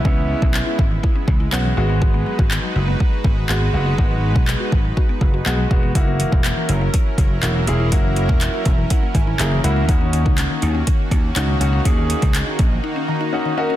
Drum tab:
HH |----------------|----------------|----------------|x-x-x-x-x-x-x-x-|
CP |----x-------x---|----x-------x---|----x-------x---|----x-------x---|
BD |o--o--o-o-o-----|o--o----o-o-----|o--o--o-o-o---o-|o--o----o-o-----|

HH |x-x-x-x-x-x-x-x-|x-x-x-x-x-x-x-x-|x-xxx-x---------|
CP |----x-------x---|----x-------x---|----x-----------|
BD |o--o--o-o-o-----|o--o----o-o-----|o--o--o---------|